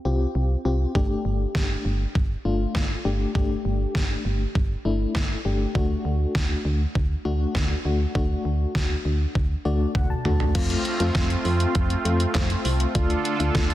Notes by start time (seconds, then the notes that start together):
0.05 C2 C4 F4 G4
0.35 C2
0.65 C2 C4 F4 G4
0.95 G1 A3 D4 G4, kick
1.25 G1
1.55 G1, kick, snare
1.85 G1
2.15 G1, kick
2.45 G1 A3 D4 F4
2.75 G1, kick, snare
3.05 G1 A3 D4 G4
3.35 G1 A3 D4 G4, kick
3.65 G1
3.95 G1, kick, snare
4.25 G1
4.55 G1, kick
4.85 G1 A3 D4 E4
5.15 G1, kick, snare
5.45 G1 A3 D4 G4
5.75 D2 A3 D4 F#4, kick
6.05 D2
6.35 D2, kick, snare
6.65 D2
6.95 D2, kick
7.25 D2 A3 D4 F#4
7.55 D2, kick, snare
7.85 D2 A3 D4 F#4
8.15 D2 A3 D4 F#4, kick
8.45 D2
8.75 D2, kick, snare
9.05 D2
9.35 D2, kick
9.65 D2 A3 D4 F#4 D5
9.95 D2 F#5, kick, high tom
10.10 A5
10.25 D2 A3 D4 F#4, mid tom
10.40 floor tom
10.55 F2 A3 C4 F4, kick, closed hi-hat, crash
10.70 closed hi-hat
10.85 closed hi-hat
11.00 F2 A3 C4 F4, closed hi-hat
11.15 F2, kick, snare, closed hi-hat
11.30 closed hi-hat
11.45 F2, open hi-hat
11.60 closed hi-hat
11.75 F2, kick, closed hi-hat
11.90 closed hi-hat
12.05 F2 A3 C4 F4, closed hi-hat
12.20 closed hi-hat
12.35 F2, kick, snare, clap, closed hi-hat
12.50 closed hi-hat
12.65 C2, open hi-hat
12.80 closed hi-hat
12.95 D2 D3 A3 D4 F4 A4, kick, closed hi-hat
13.10 closed hi-hat
13.25 closed hi-hat
13.40 D2 A3 D4 F4, closed hi-hat
13.55 D2, kick, snare, closed hi-hat
13.70 closed hi-hat